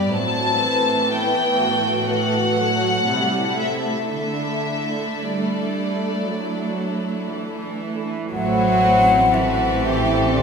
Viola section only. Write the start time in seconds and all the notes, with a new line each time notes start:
Already playing: G3 B3
0.11 F#3 C4
0.61 E3
1.10 B3
2.08 E3 A3
2.57 F#3
3.08 G3 E4
3.59 A3
4.12 A3 D4
8.33 A3
8.83 C4
9.35 C4